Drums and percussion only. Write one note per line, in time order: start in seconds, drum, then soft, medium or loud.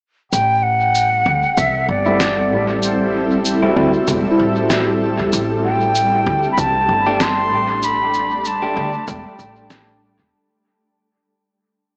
0.33 cabasa medium
0.95 cabasa medium
1.57 kick loud
1.57 cabasa soft
2.20 snare medium
2.20 cabasa medium
2.83 cabasa medium
3.45 cabasa medium
4.07 kick loud
4.07 cabasa medium
4.70 snare medium
4.70 cabasa medium
5.32 cabasa medium
5.95 cabasa medium
6.58 kick loud
6.58 cabasa soft
7.20 snare medium
7.20 cabasa medium
7.83 cabasa medium
8.14 cabasa soft
8.45 cabasa medium
9.08 kick loud
9.08 cabasa medium
9.39 cabasa soft
9.70 snare loud
9.70 cabasa medium